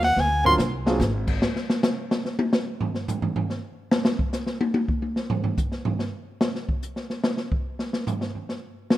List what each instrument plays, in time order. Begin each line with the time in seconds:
Already playing: upright bass D#2
0.03 soprano saxophone F#5, snare, ride
0.16 upright bass D2, soprano saxophone G#5, snare
0.44 grand piano F#3 C4 D4 F4 A#4, soprano saxophone C6, floor tom
0.58 upright bass C2, snare, hi-hat pedal
0.86 grand piano F#3 C4 D4 F4 G#4, snare
1.00 upright bass G#1, snare, hi-hat pedal
1.27 kick, crash
1.42 snare
1.56 snare
1.70 snare
1.83 snare, hi-hat pedal
2.11 snare
2.25 snare
2.39 high tom
2.53 snare
2.81 floor tom
2.95 snare
3.08 floor tom, hi-hat pedal
3.22 floor tom
3.36 floor tom
3.50 snare
3.91 snare
4.05 snare
4.19 kick
4.33 snare, hi-hat pedal
4.47 snare
4.61 high tom
4.74 high tom
4.88 kick
5.02 high tom
5.16 snare
5.30 floor tom
5.44 floor tom
5.57 kick, hi-hat pedal
5.72 snare
5.85 floor tom
5.99 snare
6.41 snare
6.55 snare
6.69 kick
6.83 hi-hat pedal
6.96 snare
7.10 snare
7.24 snare
7.37 snare
7.52 kick
7.79 snare
7.93 snare
8.07 floor tom, hi-hat pedal
8.21 snare
8.35 floor tom
8.49 snare
8.90 snare